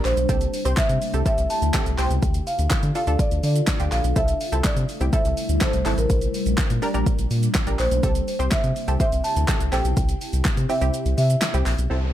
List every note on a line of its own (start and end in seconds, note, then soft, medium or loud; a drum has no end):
0.00 0.25 G3 medium
0.00 0.27 A#3 medium
0.00 0.14 D4 medium
0.00 0.27 D4 medium
0.00 0.14 G4 medium
0.00 0.14 A#4 medium
0.05 0.14 A#1 medium
0.05 0.80 C5 loud
0.05 clap medium
0.05 open hi-hat medium
0.05 shaker medium
0.17 0.26 B1 medium
0.17 closed hi-hat soft
0.17 shaker medium
0.29 0.47 C2 loud
0.29 2.21 C3 medium
0.29 2.21 A3 medium
0.29 0.50 C4 medium
0.29 2.21 E4 medium
0.29 2.21 G4 medium
0.29 0.50 G4 medium
0.29 0.50 A4 medium
0.29 kick loud
0.29 closed hi-hat medium
0.29 shaker medium
0.41 closed hi-hat medium
0.41 shaker medium
0.54 open hi-hat medium
0.54 shaker medium
0.65 0.74 C2 loud
0.65 0.93 C4 medium
0.65 0.94 G4 medium
0.65 0.94 C5 medium
0.65 closed hi-hat medium
0.65 shaker medium
0.77 0.82 C3 soft
0.77 1.25 E5 loud
0.77 kick loud
0.77 snare loud
0.77 clap loud
0.77 closed hi-hat medium
0.77 shaker medium
0.89 0.98 C3 loud
0.89 closed hi-hat medium
0.89 shaker medium
1.02 open hi-hat medium
1.02 shaker soft
1.14 1.23 C2 medium
1.14 1.21 C4 medium
1.14 1.21 G4 medium
1.14 1.21 A4 medium
1.14 closed hi-hat soft
1.14 shaker medium
1.25 1.54 C4 medium
1.25 1.54 G4 medium
1.25 1.54 A4 medium
1.25 1.37 E5 loud
1.25 kick loud
1.25 closed hi-hat medium
1.25 shaker medium
1.38 1.47 C2 medium
1.38 closed hi-hat medium
1.38 shaker medium
1.50 1.95 A5 loud
1.50 open hi-hat medium
1.50 shaker medium
1.62 1.71 D2 medium
1.62 closed hi-hat medium
1.62 shaker medium
1.74 1.88 C4 medium
1.74 1.88 G4 medium
1.74 1.88 A4 loud
1.74 kick loud
1.74 snare medium
1.74 clap loud
1.74 closed hi-hat medium
1.74 shaker medium
1.86 1.95 C2 loud
1.86 closed hi-hat medium
1.86 shaker medium
1.98 2.07 C2 medium
1.98 2.22 C4 medium
1.98 2.23 G4 medium
1.98 2.23 C5 medium
1.98 2.48 G5 loud
1.98 clap medium
1.98 open hi-hat medium
1.98 shaker medium
2.10 2.19 C#2 medium
2.10 closed hi-hat soft
2.10 shaker medium
2.23 2.41 D2 loud
2.23 4.14 D3 medium
2.23 4.14 D4 medium
2.23 4.14 F4 medium
2.23 4.14 A4 medium
2.23 kick loud
2.23 closed hi-hat medium
2.23 shaker medium
2.34 closed hi-hat medium
2.34 shaker medium
2.47 2.94 F5 loud
2.47 open hi-hat medium
2.47 shaker medium
2.59 2.68 D2 loud
2.59 closed hi-hat medium
2.59 shaker medium
2.70 2.76 D3 soft
2.70 kick loud
2.70 snare loud
2.70 clap loud
2.70 closed hi-hat medium
2.70 shaker medium
2.83 2.92 D3 loud
2.83 closed hi-hat medium
2.83 shaker medium
2.95 3.02 D4 medium
2.95 3.02 F4 medium
2.95 3.02 A4 medium
2.95 3.20 F5 loud
2.95 open hi-hat medium
2.95 shaker medium
3.07 3.16 D2 medium
3.07 3.50 D4 medium
3.07 3.50 F4 medium
3.07 3.50 A4 medium
3.07 closed hi-hat soft
3.07 shaker medium
3.19 3.43 D5 loud
3.19 kick loud
3.19 closed hi-hat medium
3.19 shaker medium
3.31 3.40 D2 loud
3.31 closed hi-hat medium
3.31 shaker medium
3.43 3.61 D3 loud
3.43 3.94 D5 medium
3.43 open hi-hat medium
3.43 shaker medium
3.56 closed hi-hat medium
3.56 shaker medium
3.67 kick loud
3.67 snare medium
3.67 clap loud
3.67 closed hi-hat medium
3.67 shaker medium
3.80 3.89 D2 medium
3.80 4.01 D4 medium
3.80 4.01 F4 medium
3.80 4.01 G4 medium
3.80 closed hi-hat medium
3.80 shaker medium
3.92 4.01 A#1 medium
3.92 4.17 F5 medium
3.92 clap medium
3.92 open hi-hat medium
3.92 shaker medium
4.04 4.13 B1 loud
4.04 closed hi-hat medium
4.04 shaker medium
4.16 4.34 C2 loud
4.16 6.08 C3 medium
4.16 7.99 G3 medium
4.16 6.08 A3 medium
4.16 4.37 C4 medium
4.16 6.08 E4 medium
4.16 4.37 E4 medium
4.16 4.38 A4 medium
4.16 4.66 E5 loud
4.16 kick loud
4.16 closed hi-hat medium
4.16 shaker medium
4.28 closed hi-hat medium
4.28 shaker medium
4.41 open hi-hat medium
4.41 shaker medium
4.52 4.61 C2 medium
4.52 4.81 C4 medium
4.52 4.81 E4 medium
4.52 4.81 A4 medium
4.52 closed hi-hat medium
4.52 shaker medium
4.64 4.69 C3 medium
4.64 5.14 D5 medium
4.64 kick loud
4.64 snare medium
4.64 clap loud
4.64 closed hi-hat medium
4.64 shaker medium
4.76 4.85 C3 loud
4.76 closed hi-hat medium
4.76 shaker medium
4.89 open hi-hat medium
4.89 shaker medium
5.01 5.10 C2 loud
5.01 5.08 C4 medium
5.01 5.08 E4 medium
5.01 5.08 G4 medium
5.01 closed hi-hat soft
5.01 shaker medium
5.13 5.41 C4 medium
5.13 5.41 E4 medium
5.13 5.41 A4 medium
5.13 5.58 E5 loud
5.13 kick loud
5.13 closed hi-hat medium
5.13 shaker medium
5.25 5.34 C2 loud
5.25 closed hi-hat medium
5.25 shaker medium
5.37 open hi-hat medium
5.37 shaker medium
5.49 5.58 D2 loud
5.49 closed hi-hat medium
5.49 shaker medium
5.61 5.75 C4 medium
5.61 5.75 E4 medium
5.61 5.76 A4 loud
5.61 5.89 C5 medium
5.61 kick loud
5.61 snare loud
5.61 clap loud
5.61 closed hi-hat medium
5.61 shaker medium
5.73 5.82 C2 medium
5.73 closed hi-hat medium
5.73 shaker medium
5.85 5.94 G#1 medium
5.85 6.10 C4 medium
5.85 6.10 E4 medium
5.85 6.10 A4 medium
5.85 clap medium
5.85 open hi-hat medium
5.85 shaker medium
5.91 5.98 C5 medium
5.97 6.06 A1 loud
5.97 6.66 A#4 medium
5.97 closed hi-hat medium
5.97 shaker medium
6.10 6.28 A#1 loud
6.10 8.01 A#3 medium
6.10 8.01 D4 medium
6.10 kick loud
6.10 closed hi-hat medium
6.10 shaker medium
6.21 closed hi-hat medium
6.21 shaker medium
6.34 open hi-hat medium
6.34 shaker medium
6.46 6.55 A#1 medium
6.46 closed hi-hat medium
6.46 shaker medium
6.58 6.63 A#2 soft
6.58 kick loud
6.58 snare loud
6.58 clap loud
6.58 closed hi-hat medium
6.58 shaker medium
6.70 6.79 A#2 loud
6.70 closed hi-hat medium
6.70 shaker medium
6.82 6.89 D4 medium
6.82 6.89 G4 medium
6.82 6.90 A#4 loud
6.82 open hi-hat medium
6.82 shaker medium
6.94 7.03 A#1 medium
6.94 7.37 D4 medium
6.94 7.37 G4 medium
6.94 7.37 A#4 medium
6.94 closed hi-hat soft
6.94 shaker medium
7.06 kick loud
7.06 closed hi-hat medium
7.06 shaker medium
7.19 7.28 A#1 loud
7.19 closed hi-hat medium
7.19 shaker medium
7.31 7.49 A#2 loud
7.31 open hi-hat medium
7.31 shaker medium
7.43 closed hi-hat medium
7.43 shaker medium
7.55 kick loud
7.55 snare medium
7.55 clap loud
7.55 closed hi-hat medium
7.55 shaker medium
7.67 7.76 A#1 medium
7.67 7.88 D4 medium
7.67 7.88 G4 medium
7.67 7.88 A#4 medium
7.67 closed hi-hat medium
7.67 shaker medium
7.79 7.88 A#1 medium
7.79 8.24 C5 loud
7.79 clap medium
7.79 open hi-hat medium
7.79 shaker medium
7.91 8.00 B1 medium
7.91 closed hi-hat medium
7.91 shaker medium
8.03 8.21 C2 loud
8.03 9.95 C3 medium
8.03 8.24 C4 medium
8.03 11.86 C4 medium
8.03 11.86 E4 medium
8.03 11.86 G4 medium
8.03 8.24 G4 medium
8.03 8.25 A4 medium
8.03 kick loud
8.03 closed hi-hat medium
8.03 shaker medium
8.15 closed hi-hat medium
8.15 shaker medium
8.28 open hi-hat medium
8.28 shaker medium
8.39 8.49 C2 loud
8.39 8.68 C4 medium
8.39 8.68 G4 medium
8.39 8.68 C5 medium
8.39 closed hi-hat medium
8.39 shaker medium
8.52 8.57 C3 medium
8.52 8.99 E5 loud
8.52 kick loud
8.52 snare medium
8.52 clap loud
8.52 closed hi-hat medium
8.52 shaker medium
8.64 8.73 C3 loud
8.64 closed hi-hat medium
8.64 shaker medium
8.76 open hi-hat medium
8.76 shaker medium
8.88 8.97 C2 medium
8.88 8.95 C4 medium
8.88 8.95 G4 medium
8.88 8.95 A4 medium
8.88 closed hi-hat soft
8.88 shaker medium
9.00 9.28 C4 medium
9.00 9.28 G4 medium
9.00 9.29 C5 medium
9.00 9.25 E5 loud
9.00 kick loud
9.00 closed hi-hat medium
9.00 shaker medium
9.12 9.21 C2 loud
9.12 closed hi-hat soft
9.12 shaker medium
9.24 9.74 A5 loud
9.24 open hi-hat medium
9.24 shaker medium
9.36 9.45 D2 medium
9.36 closed hi-hat medium
9.36 shaker medium
9.48 9.62 C4 medium
9.48 9.63 G4 medium
9.48 9.63 A4 loud
9.48 kick loud
9.48 snare medium
9.48 clap loud
9.48 closed hi-hat medium
9.48 shaker medium
9.60 9.69 C2 loud
9.60 closed hi-hat medium
9.60 shaker medium
9.72 9.81 A#1 loud
9.72 9.97 C4 medium
9.72 9.97 G4 medium
9.72 9.97 A4 medium
9.72 10.72 G5 loud
9.72 clap medium
9.72 open hi-hat medium
9.72 shaker medium
9.85 9.94 B1 loud
9.85 closed hi-hat medium
9.85 shaker medium
9.97 10.15 C2 loud
9.97 11.88 C3 medium
9.97 kick loud
9.97 closed hi-hat medium
9.97 shaker medium
10.09 closed hi-hat medium
10.09 shaker medium
10.21 open hi-hat medium
10.21 shaker medium
10.33 10.42 C2 loud
10.33 closed hi-hat medium
10.33 shaker medium
10.45 10.50 C3 medium
10.45 kick loud
10.45 snare loud
10.45 clap loud
10.45 closed hi-hat medium
10.45 shaker medium
10.57 10.66 C3 loud
10.57 closed hi-hat medium
10.57 shaker medium
10.69 10.76 C4 medium
10.69 10.76 E4 medium
10.69 10.77 G4 medium
10.69 11.16 E5 medium
10.69 open hi-hat medium
10.69 shaker medium
10.81 10.90 C2 medium
10.81 11.24 C4 medium
10.81 11.24 E4 medium
10.81 11.24 G4 medium
10.81 closed hi-hat soft
10.81 shaker medium
10.94 closed hi-hat medium
10.94 shaker medium
11.06 11.15 C2 loud
11.06 closed hi-hat medium
11.06 shaker soft
11.18 11.36 C3 loud
11.18 11.63 E5 medium
11.18 open hi-hat medium
11.18 shaker medium
11.30 closed hi-hat medium
11.30 shaker medium
11.42 snare loud
11.42 clap loud
11.42 closed hi-hat medium
11.42 shaker medium
11.54 11.63 C2 medium
11.54 11.75 C4 medium
11.54 11.75 E4 medium
11.54 11.75 G4 medium
11.54 closed hi-hat medium
11.54 shaker medium
11.66 11.75 A#1 medium
11.66 clap medium
11.66 open hi-hat medium
11.66 shaker medium
11.78 11.87 B1 loud
11.78 closed hi-hat medium
11.78 shaker medium
11.90 12.13 C2 medium
11.90 12.13 C4 medium
11.90 12.13 E4 medium
11.90 12.13 A4 medium
11.90 downlifter medium